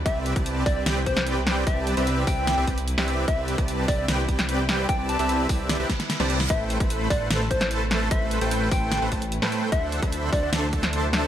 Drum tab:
HH |x-xxx-o-x-xxx-x-|x-xxx-o-x-xxx-x-|x-xxx-o-x-xxx-x-|x-xxx-o-x-xxx-x-|
SD |--------o--o--o-|--------o----o--|--------o--o--o-|--------o-oooo-o|
BD |o--o--o---o-----|o-----o---o-----|o--o--o---o-----|o-----o---o-----|

HH |x-xxx-o-x-xxx-x-|x-xxx-o-x-xxx-x-|x-xxx-o-x-xxx-x-|
SD |--------o--o--o-|--------o----o--|--------o--o--o-|
BD |o--o--o---o-----|o-----o---o-----|o--o--o---o-----|